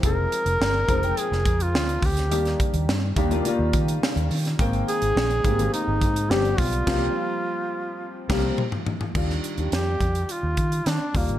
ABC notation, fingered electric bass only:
X:1
M:4/4
L:1/16
Q:1/4=105
K:Eb
V:1 name="Fingered electric bass" clef=bass
F,,,2 z F,,, G,,,2 F,,,2 z F,,, F,,2 D,,2 D,,2 | E,,2 z E,, G,,2 E,,2 z E,, E,2 z E,, E,2 | A,,,2 z A,,, B,,,2 A,,,2 z A,,, A,,2 G,,,2 =B,,,2 | C,,2 z8 C,,2 z4 |
E,,2 z E,, F,,2 F,,2 z E,, E,2 E, z E,, A,,, |]